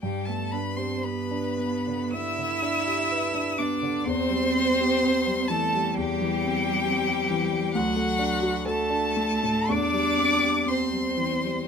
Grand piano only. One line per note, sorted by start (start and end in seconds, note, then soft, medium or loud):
0.03 2.09 G2 medium
0.28 0.68 B3 soft
0.53 0.94 D4 soft
0.77 1.20 G4 soft
1.04 1.47 B4 medium
1.31 1.76 D4 medium
1.59 2.02 B3 soft
1.87 2.28 D3 soft
2.13 2.53 B3 medium
2.39 2.77 D3 medium
2.62 3.00 D4 medium
2.86 3.24 G4 medium
3.12 3.49 B4 medium
3.34 3.73 D4 medium
3.59 3.97 B3 medium
3.82 4.06 D3 medium
4.06 5.92 E2 medium
4.30 4.68 G3 medium
4.55 4.93 C4 medium
4.80 5.17 G4 medium
5.03 5.40 C4 medium
5.27 5.64 G3 medium
5.50 5.87 E3 medium
5.74 6.11 G3 medium
5.98 7.72 E2 medium
6.22 6.57 E3 medium
6.45 6.79 C4 medium
6.66 7.01 G4 medium
6.87 7.22 C4 medium
7.09 7.45 G3 medium
7.30 7.67 E3 medium
7.53 7.76 G3 medium
7.75 9.68 D2 medium
7.97 8.34 A3 medium
8.19 8.58 D4 medium
8.42 8.82 F#4 medium
8.66 9.08 A4 medium
8.90 9.34 D4 medium
9.16 9.60 A3 medium
9.43 9.71 A2 medium
9.69 11.67 E2 medium
9.93 10.33 G3 medium
10.17 10.58 C4 medium
10.41 10.82 G4 medium
10.66 11.08 C4 medium
10.93 11.35 G3 medium
11.17 11.61 E3 soft
11.44 11.68 G3 soft